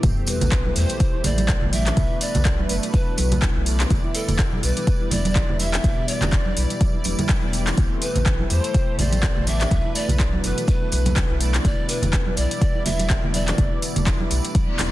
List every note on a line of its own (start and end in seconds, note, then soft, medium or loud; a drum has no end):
0.03 0.13 A1 loud
0.03 0.16 E3 medium
0.03 1.95 G3 medium
0.03 0.73 A3 medium
0.03 3.87 A3 medium
0.03 0.73 C4 medium
0.03 1.95 E4 medium
0.03 0.73 G4 medium
0.03 1.95 A4 medium
0.03 kick loud
0.03 closed hi-hat medium
0.03 tambourine soft
0.03 sub drop medium
0.03 low conga loud
0.17 0.27 B2 loud
0.27 0.40 G3 medium
0.27 0.78 B4 loud
0.27 open hi-hat loud
0.27 tambourine loud
0.41 0.70 A1 medium
0.41 0.47 E3 loud
0.41 closed hi-hat soft
0.41 tambourine medium
0.41 low conga loud
0.52 kick loud
0.52 clap loud
0.52 closed hi-hat medium
0.66 0.76 E4 medium
0.66 high conga medium
0.76 0.85 E2 medium
0.76 1.70 A3 medium
0.76 1.70 G4 medium
0.76 1.70 C5 medium
0.76 1.26 C5 loud
0.76 open hi-hat loud
0.76 tambourine loud
0.89 closed hi-hat soft
0.89 tambourine medium
1.00 1.08 E3 loud
1.00 kick loud
1.00 closed hi-hat medium
1.00 tambourine soft
1.14 1.24 E4 loud
1.24 1.55 A1 medium
1.24 1.32 A3 medium
1.24 1.74 D5 loud
1.24 open hi-hat loud
1.24 tambourine loud
1.24 high conga medium
1.24 low conga loud
1.38 closed hi-hat soft
1.38 tambourine medium
1.38 high conga loud
1.48 1.61 E3 medium
1.48 kick loud
1.48 clap loud
1.48 closed hi-hat medium
1.62 1.91 A1 medium
1.62 1.72 B2 loud
1.62 low conga medium
1.73 1.85 G3 medium
1.73 1.94 A3 medium
1.73 1.94 G4 medium
1.73 1.94 D5 loud
1.73 2.22 E5 loud
1.73 open hi-hat loud
1.73 tambourine medium
1.73 high conga medium
1.86 1.92 E3 loud
1.86 clap medium
1.86 closed hi-hat soft
1.86 tambourine soft
1.97 2.06 B1 loud
1.97 2.67 A3 medium
1.97 2.09 B3 medium
1.97 3.89 B3 medium
1.97 2.67 D4 medium
1.97 3.89 D4 medium
1.97 3.89 F#4 medium
1.97 2.67 B4 medium
1.97 7.74 B4 medium
1.97 kick loud
1.97 closed hi-hat medium
1.97 tambourine soft
1.97 low conga loud
2.11 2.21 E4 medium
2.21 2.69 D5 loud
2.21 open hi-hat loud
2.21 tambourine loud
2.35 2.64 B1 loud
2.35 closed hi-hat soft
2.35 tambourine medium
2.35 low conga loud
2.45 kick loud
2.45 clap medium
2.45 closed hi-hat medium
2.45 tambourine soft
2.59 2.69 E4 loud
2.59 high conga loud
2.69 2.79 F#1 medium
2.69 3.64 A3 medium
2.69 2.77 A3 medium
2.69 3.64 D4 medium
2.69 2.75 B4 medium
2.69 3.64 B4 medium
2.69 open hi-hat loud
2.69 tambourine loud
2.83 closed hi-hat soft
2.83 tambourine medium
2.93 3.06 E3 medium
2.93 3.62 B4 medium
2.93 kick loud
2.93 closed hi-hat medium
2.93 high conga medium
3.07 3.17 B2 loud
3.18 3.49 B1 medium
3.18 3.30 F#3 medium
3.18 open hi-hat loud
3.18 tambourine medium
3.18 high conga medium
3.31 3.37 E3 loud
3.31 closed hi-hat soft
3.31 tambourine medium
3.31 high conga medium
3.31 low conga loud
3.42 3.55 B3 medium
3.42 kick loud
3.42 clap loud
3.42 closed hi-hat medium
3.56 3.85 B1 medium
3.56 3.66 E4 medium
3.66 3.88 A3 medium
3.66 3.88 D4 medium
3.66 3.88 D5 loud
3.66 open hi-hat loud
3.66 tambourine medium
3.80 clap loud
3.80 closed hi-hat soft
3.80 tambourine medium
3.90 4.00 E1 loud
3.90 3.98 E3 loud
3.90 4.61 G3 medium
3.90 9.67 G3 medium
3.90 7.74 B3 medium
3.90 7.74 D4 medium
3.90 4.61 E4 medium
3.90 9.67 E4 medium
3.90 4.61 D5 medium
3.90 kick loud
3.90 closed hi-hat medium
3.90 tambourine soft
3.90 low conga loud
4.04 4.14 E4 loud
4.15 4.22 A3 medium
4.15 4.60 A4 medium
4.15 open hi-hat loud
4.15 tambourine loud
4.28 4.57 E1 loud
4.28 closed hi-hat soft
4.28 tambourine medium
4.28 low conga loud
4.39 4.51 E3 medium
4.39 kick loud
4.39 clap loud
4.39 closed hi-hat medium
4.53 4.63 B2 loud
4.53 high conga medium
4.63 4.72 B1 loud
4.63 5.57 G3 medium
4.63 4.76 G3 medium
4.63 5.57 E4 medium
4.63 5.13 B4 loud
4.63 5.57 D5 medium
4.63 open hi-hat medium
4.63 tambourine loud
4.77 4.83 E3 loud
4.77 closed hi-hat soft
4.77 tambourine medium
4.87 kick loud
4.87 closed hi-hat medium
4.87 tambourine soft
5.01 5.11 E4 medium
5.11 5.42 E1 medium
5.11 5.61 D5 loud
5.11 open hi-hat loud
5.11 tambourine loud
5.11 high conga medium
5.11 low conga loud
5.25 closed hi-hat soft
5.25 tambourine medium
5.25 high conga loud
5.35 5.43 E3 loud
5.35 kick loud
5.35 clap loud
5.35 closed hi-hat medium
5.35 tambourine soft
5.49 5.78 E1 medium
5.49 5.59 E4 loud
5.49 low conga loud
5.59 5.81 G3 medium
5.59 5.67 A3 medium
5.59 5.81 E4 medium
5.59 5.81 E5 loud
5.59 5.73 E5 loud
5.59 open hi-hat medium
5.59 tambourine loud
5.59 high conga medium
5.74 6.10 E5 loud
5.74 clap loud
5.74 closed hi-hat soft
5.74 tambourine medium
5.84 5.93 E1 loud
5.84 5.96 E3 medium
5.84 6.54 G3 medium
5.84 6.54 E4 medium
5.84 6.54 D5 medium
5.84 kick loud
5.84 closed hi-hat medium
5.84 tambourine soft
5.84 low conga loud
5.98 6.08 B2 loud
6.08 6.21 G3 medium
6.08 7.05 D5 loud
6.08 open hi-hat medium
6.08 tambourine medium
6.21 6.51 E1 loud
6.21 6.28 E3 loud
6.21 clap medium
6.21 closed hi-hat soft
6.21 tambourine medium
6.21 low conga loud
6.31 6.45 B3 medium
6.31 kick loud
6.31 clap medium
6.31 closed hi-hat medium
6.31 tambourine soft
6.46 6.56 E4 medium
6.46 high conga medium
6.56 6.66 B1 medium
6.56 7.03 G3 medium
6.56 7.03 E4 medium
6.56 7.03 D5 medium
6.56 open hi-hat medium
6.56 tambourine medium
6.70 closed hi-hat soft
6.70 tambourine medium
6.81 6.88 E3 loud
6.81 kick loud
6.81 closed hi-hat medium
6.81 tambourine soft
6.81 high conga medium
6.95 7.05 E4 loud
7.04 7.14 E1 medium
7.04 7.27 G3 medium
7.04 7.13 A3 medium
7.04 7.27 E4 medium
7.04 7.27 D5 medium
7.04 open hi-hat medium
7.04 tambourine loud
7.04 high conga medium
7.19 closed hi-hat soft
7.19 tambourine medium
7.19 high conga loud
7.19 low conga medium
7.29 7.42 E3 medium
7.29 7.75 G3 medium
7.29 7.75 E4 medium
7.29 7.75 D5 loud
7.29 kick loud
7.29 clap loud
7.29 closed hi-hat medium
7.43 7.72 E1 medium
7.43 7.53 B2 loud
7.43 high conga medium
7.53 7.66 G3 medium
7.53 open hi-hat medium
7.53 tambourine medium
7.67 7.73 E3 loud
7.67 clap medium
7.67 closed hi-hat soft
7.67 tambourine medium
7.77 7.87 A1 medium
7.77 8.48 A3 medium
7.77 11.61 A3 medium
7.77 7.90 B3 medium
7.77 8.48 C4 medium
7.77 8.48 G4 medium
7.77 9.69 A4 medium
7.77 kick loud
7.77 closed hi-hat medium
7.77 tambourine soft
7.77 low conga loud
7.91 8.01 E4 medium
8.02 8.52 B4 loud
8.02 open hi-hat medium
8.02 tambourine loud
8.15 8.45 A1 loud
8.15 closed hi-hat soft
8.15 tambourine medium
8.15 low conga medium
8.26 8.33 E3 loud
8.26 kick loud
8.26 clap loud
8.26 closed hi-hat medium
8.39 8.50 E4 loud
8.39 high conga medium
8.50 8.59 E2 medium
8.50 8.58 A3 medium
8.50 9.44 A3 medium
8.50 9.45 G4 medium
8.50 9.45 C5 medium
8.50 9.00 C5 loud
8.50 open hi-hat medium
8.50 tambourine medium
8.64 closed hi-hat soft
8.64 tambourine medium
8.74 kick loud
8.74 closed hi-hat medium
8.74 tambourine soft
8.88 8.98 B2 loud
8.98 9.29 A1 medium
8.98 9.11 G3 medium
8.98 9.49 D5 loud
8.98 open hi-hat medium
8.98 tambourine medium
8.98 high conga medium
8.98 low conga loud
9.12 9.18 E3 loud
9.12 closed hi-hat soft
9.12 tambourine medium
9.12 high conga medium
9.23 kick loud
9.23 clap loud
9.23 closed hi-hat medium
9.37 9.66 A1 medium
9.37 9.46 E4 medium
9.37 low conga medium
9.46 9.69 A3 medium
9.46 9.69 G4 medium
9.46 9.69 D5 loud
9.46 9.95 E5 loud
9.46 open hi-hat medium
9.46 tambourine medium
9.46 high conga medium
9.60 clap medium
9.60 closed hi-hat soft
9.60 tambourine medium
9.71 9.80 B1 loud
9.71 9.79 E3 loud
9.71 10.41 A3 medium
9.71 11.63 B3 medium
9.71 10.41 D4 medium
9.71 14.92 D4 medium
9.71 11.63 F#4 medium
9.71 10.41 B4 medium
9.71 14.92 B4 loud
9.71 kick loud
9.71 closed hi-hat medium
9.71 tambourine soft
9.71 low conga medium
9.85 9.95 E4 loud
9.95 10.03 A3 medium
9.95 10.46 D5 loud
9.95 open hi-hat medium
9.95 tambourine medium
10.08 10.38 B1 loud
10.08 closed hi-hat soft
10.08 tambourine medium
10.08 low conga loud
10.20 10.32 E3 medium
10.20 kick loud
10.20 clap loud
10.20 closed hi-hat medium
10.33 10.43 B2 loud
10.33 high conga loud
10.44 10.53 F#1 medium
10.44 10.56 F#3 medium
10.44 11.38 A3 medium
10.44 11.38 D4 medium
10.44 11.38 B4 medium
10.44 10.67 B4 loud
10.44 open hi-hat medium
10.44 tambourine loud
10.57 10.63 E3 loud
10.57 closed hi-hat soft
10.57 tambourine medium
10.67 11.37 B4 medium
10.67 kick loud
10.67 closed hi-hat medium
10.67 tambourine soft
10.67 high conga medium
10.82 10.92 E4 medium
10.92 11.23 B1 medium
10.92 open hi-hat medium
10.92 tambourine medium
10.92 high conga medium
11.05 closed hi-hat soft
11.05 tambourine soft
11.05 high conga loud
11.05 low conga loud
11.16 11.24 E3 loud
11.16 kick loud
11.16 clap loud
11.16 closed hi-hat medium
11.30 11.59 B1 medium
11.30 11.40 E4 loud
11.40 11.62 A3 medium
11.40 11.48 A3 medium
11.40 11.62 D4 medium
11.40 11.62 D5 loud
11.40 open hi-hat medium
11.40 tambourine medium
11.54 clap medium
11.54 closed hi-hat soft
11.54 tambourine medium
11.64 11.74 E1 loud
11.64 11.77 E3 medium
11.64 12.35 G3 medium
11.64 14.92 G3 medium
11.64 14.92 B3 medium
11.64 12.35 E4 medium
11.64 14.92 E4 medium
11.64 12.35 D5 medium
11.64 11.90 D5 loud
11.64 kick loud
11.64 closed hi-hat medium
11.64 tambourine soft
11.64 low conga loud
11.78 11.88 B2 loud
11.89 12.01 G3 medium
11.89 12.39 B4 loud
11.89 open hi-hat medium
11.89 tambourine medium
12.02 12.32 E1 loud
12.02 12.08 E3 loud
12.02 closed hi-hat soft
12.02 tambourine soft
12.02 low conga loud
12.13 kick loud
12.13 clap loud
12.13 closed hi-hat medium
12.27 12.37 E4 medium
12.27 high conga medium
12.37 12.46 B1 medium
12.37 13.31 G3 medium
12.37 13.32 E4 medium
12.37 12.87 D5 loud
12.37 13.31 D5 medium
12.37 open hi-hat medium
12.37 tambourine medium
12.51 closed hi-hat soft
12.51 tambourine medium
12.61 12.69 E3 loud
12.61 kick loud
12.61 closed hi-hat medium
12.75 12.85 E4 loud
12.85 13.16 E1 medium
12.85 12.93 A3 medium
12.85 13.33 E5 loud
12.85 open hi-hat medium
12.85 tambourine medium
12.85 high conga medium
12.85 low conga loud
12.99 closed hi-hat soft
12.99 tambourine medium
12.99 high conga medium
13.10 13.22 E3 medium
13.10 kick loud
13.10 clap loud
13.10 closed hi-hat medium
13.24 13.53 E1 medium
13.24 13.33 B2 loud
13.24 low conga medium
13.34 13.56 G3 medium
13.34 13.46 G3 medium
13.34 13.56 E4 medium
13.34 13.79 D5 loud
13.34 13.56 E5 loud
13.34 open hi-hat medium
13.34 tambourine medium
13.34 high conga medium
13.48 13.53 E3 loud
13.48 clap medium
13.48 closed hi-hat soft
13.48 tambourine medium
13.58 13.67 E1 loud
13.58 14.28 G3 medium
13.58 14.28 E4 medium
13.58 14.28 D5 medium
13.58 kick loud
13.58 closed hi-hat medium
13.58 tambourine soft
13.58 low conga medium
13.72 13.82 E4 medium
13.82 open hi-hat medium
13.82 tambourine medium
13.96 14.25 E1 loud
13.96 closed hi-hat soft
13.96 tambourine soft
13.96 low conga loud
14.07 14.14 E3 loud
14.07 kick loud
14.07 clap loud
14.07 closed hi-hat medium
14.20 14.30 E4 loud
14.20 high conga medium
14.31 14.40 B1 medium
14.31 14.77 G3 medium
14.31 14.38 A3 medium
14.31 14.77 E4 medium
14.31 14.77 D5 loud
14.31 open hi-hat medium
14.31 tambourine loud
14.45 closed hi-hat soft
14.45 tambourine medium
14.55 14.67 E3 medium
14.55 kick loud
14.55 closed hi-hat medium
14.55 reverse cymbal medium
14.55 high conga medium
14.69 14.79 B2 loud
14.78 14.92 E1 medium
14.78 14.92 G3 medium
14.78 14.92 E4 medium
14.78 14.92 D5 medium
14.78 clap medium
14.78 open hi-hat medium
14.78 tambourine medium
14.78 high conga medium